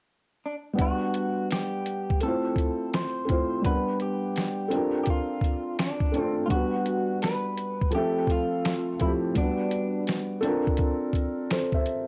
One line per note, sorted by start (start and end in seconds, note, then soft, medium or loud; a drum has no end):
0.46 0.55 D4 medium
0.73 2.06 G3 medium
0.73 2.07 B3 medium
0.73 2.08 D4 medium
0.79 1.48 F#4 medium
0.79 2.09 B4 medium
0.79 2.09 F#5 medium
0.79 kick loud
0.79 closed hi-hat medium
1.14 closed hi-hat medium
1.51 2.23 G4 loud
1.51 finger snap medium
1.51 snare loud
1.51 closed hi-hat medium
1.86 closed hi-hat medium
2.10 kick medium
2.20 3.19 A3 medium
2.20 3.20 C4 medium
2.20 3.20 E4 medium
2.20 2.90 A4 medium
2.20 closed hi-hat medium
2.26 3.21 F4 medium
2.26 3.22 C5 medium
2.56 kick medium
2.56 closed hi-hat medium
2.94 3.65 C5 loud
2.94 finger snap medium
2.94 snare loud
2.94 closed hi-hat medium
3.25 3.59 A3 medium
3.25 3.60 C4 medium
3.25 3.61 E4 medium
3.25 closed hi-hat medium
3.30 3.62 F4 medium
3.30 3.63 C5 medium
3.30 kick medium
3.62 4.70 G3 medium
3.62 4.71 B3 soft
3.62 4.70 D4 medium
3.62 kick loud
3.62 closed hi-hat medium
3.66 3.75 A#4 soft
3.66 3.99 B4 loud
3.66 4.73 F#5 medium
3.75 4.77 B4 medium
4.00 5.02 G4 medium
4.00 closed hi-hat medium
4.36 finger snap medium
4.36 snare loud
4.36 closed hi-hat medium
4.68 6.01 C4 medium
4.68 6.02 D4 medium
4.68 6.00 A4 medium
4.68 closed hi-hat medium
4.73 6.02 F4 medium
4.73 6.03 A#4 medium
5.04 5.08 G4 medium
5.04 kick medium
5.04 closed hi-hat medium
5.10 5.80 F4 medium
5.41 kick medium
5.41 closed hi-hat medium
5.79 6.22 D4 medium
5.79 finger snap loud
5.79 snare loud
5.79 closed hi-hat medium
6.01 kick loud
6.12 6.46 A3 medium
6.12 6.46 C4 medium
6.12 6.47 D4 medium
6.12 closed hi-hat medium
6.17 6.48 F4 medium
6.17 6.49 A4 medium
6.22 6.34 C4 medium
6.46 7.79 G3 medium
6.46 7.80 B3 medium
6.46 6.51 F4 medium
6.50 7.81 D4 medium
6.50 7.22 F#4 medium
6.50 7.82 F#4 medium
6.50 kick loud
6.50 closed hi-hat medium
6.55 7.82 B4 medium
6.86 closed hi-hat medium
7.22 7.94 B4 loud
7.22 finger snap medium
7.22 snare loud
7.22 closed hi-hat medium
7.57 closed hi-hat medium
7.81 kick medium
7.91 8.89 F3 medium
7.91 8.90 A3 medium
7.91 8.91 C4 medium
7.91 closed hi-hat medium
7.95 8.31 G4 medium
7.95 8.93 A4 medium
7.95 8.92 E5 medium
8.27 9.04 F4 medium
8.27 kick medium
8.27 closed hi-hat medium
8.65 finger snap medium
8.65 snare loud
8.65 closed hi-hat medium
8.99 9.32 F3 medium
8.99 9.33 A3 medium
8.99 9.34 C4 medium
8.99 9.11 E4 medium
8.99 kick medium
8.99 closed hi-hat medium
9.05 9.35 E4 medium
9.05 9.36 G4 medium
9.35 10.43 G3 medium
9.35 10.44 B3 soft
9.35 10.04 D4 medium
9.35 10.43 D4 medium
9.35 kick loud
9.35 closed hi-hat medium
9.41 10.46 F#4 medium
9.41 10.46 B4 medium
9.71 closed hi-hat medium
10.07 finger snap medium
10.07 snare loud
10.07 closed hi-hat medium
10.41 11.73 C4 medium
10.41 11.74 D4 medium
10.41 11.51 A4 medium
10.41 closed hi-hat medium
10.46 11.75 F4 medium
10.46 11.53 A#4 medium
10.67 kick medium
10.77 kick medium
10.77 closed hi-hat medium
11.13 kick medium
11.13 closed hi-hat medium
11.50 11.73 A4 soft
11.50 11.73 C5 medium
11.50 finger snap loud
11.50 snare loud
11.50 closed hi-hat medium
11.72 12.07 C5 medium
11.72 12.07 E5 medium
11.72 kick medium
11.86 closed hi-hat medium